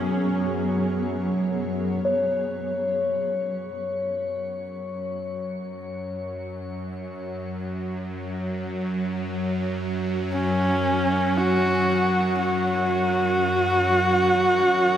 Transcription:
0.00 2.02 F#2 medium
0.00 2.03 F#3 medium
0.00 2.05 F#3 medium
0.00 2.06 B3 medium
0.00 1.02 C#4 loud
0.00 2.04 G#4 medium
0.00 2.06 B4 medium
0.00 2.04 C#5 medium
2.04 14.97 F#2 medium
2.04 14.97 F#3 medium
2.04 14.97 C#5 medium
10.32 11.38 C#4 loud
11.37 12.38 F#4 loud
12.38 14.97 F#4 loud

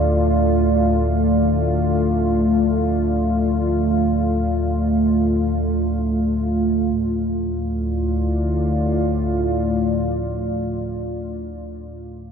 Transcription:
0.00 6.93 D2 medium
0.00 6.93 A2 medium
0.00 6.92 A3 medium
0.00 6.95 F4 medium
0.00 6.95 D5 medium
6.93 11.64 D2 medium
6.93 11.64 A2 medium
6.93 11.57 A3 medium
7.09 11.58 F4 medium
7.25 11.58 D5 medium

